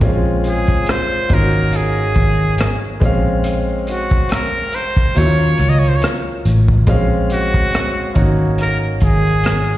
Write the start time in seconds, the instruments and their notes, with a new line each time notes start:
0.01 fingered electric bass A#1, grand piano G#3 C4 C#4 F4, kick, closed hi-hat
0.44 muted trumpet G#4, closed hi-hat
0.67 kick, closed hi-hat
0.86 cross-stick, closed hi-hat
0.91 muted trumpet C5
1.29 fingered electric bass G#1, grand piano A#3 C#4 D#4, kick, closed hi-hat
1.34 grand piano F4, muted trumpet A#4
1.40 grand piano F#4
1.51 closed hi-hat
1.72 muted trumpet G#4, closed hi-hat
2.15 fingered electric bass G#1, kick, closed hi-hat
2.58 cross-stick, closed hi-hat
3.00 fingered electric bass A#1, grand piano G#3 C4 C#4, kick, closed hi-hat
3.05 grand piano F5
3.44 closed hi-hat
3.87 muted trumpet F#4, closed hi-hat
4.10 kick, closed hi-hat
4.29 muted trumpet A#4, cross-stick, closed hi-hat
4.72 muted trumpet C5, closed hi-hat
4.97 kick
5.15 fingered electric bass D#2, grand piano F#3 A#3 C#4, muted trumpet C#5, closed hi-hat
5.20 grand piano E4
5.26 grand piano F4
5.58 fingered electric bass C#2, closed hi-hat
5.69 muted trumpet D#5
5.79 muted trumpet C#5
5.84 closed hi-hat
5.88 muted trumpet C5
5.96 muted trumpet C#5
6.01 cross-stick, closed hi-hat
6.45 fingered electric bass A1, closed hi-hat
6.68 kick
6.87 fingered electric bass A#1, grand piano G#3 C4 C#4 F5, kick, closed hi-hat
7.30 muted trumpet F#4, closed hi-hat
7.54 kick
7.72 cross-stick, closed hi-hat
8.14 fingered electric bass G#1, grand piano A#3 C#4 D#4, kick, closed hi-hat
8.19 grand piano F#4
8.58 muted trumpet A#4, closed hi-hat
9.00 fingered electric bass G#1, muted trumpet G#4, kick, closed hi-hat
9.26 closed hi-hat
9.44 cross-stick, closed hi-hat